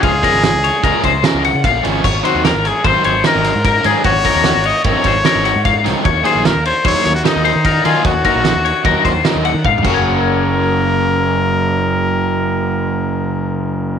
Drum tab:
CC |------------------------------|x-----------------------------|------------------------------|------------------------------|
RD |x--x--x--x--x--x--x--x--x--x--|---x--x--x--x--x--x--x--x--x--|x--x--x--x--x--x--x--x--x--x--|x--x--x--x--x--x--x--x--x--x--|
SD |------o-----------o-----o-----|------o--o--------o--o--o--o--|------o-----------o--o--o--o--|------o--------o--o--o--------|
T1 |------------------------------|------------------------------|------------------------------|------------------------------|
T2 |------------------------------|------------------------------|------------------------------|------------------------------|
BD |o--o--------o--o--------o-----|o-----------o-----------o-----|o--o--------o--o--------o-----|o-----------o-----------o-----|

CC |---------------------------x--|------------------------------|------------------------------|
RD |x--x--x--x--x--x--x--x--------|------------------------------|------------------------------|
SD |------o-----------o-----------|------------------------------|------------------------------|
T1 |------------------------o-----|------------------------------|------------------------------|
T2 |--------------------------o---|------------------------------|------------------------------|
BD |o--o--------o--o--------o--o--|------------------------------|------------------------------|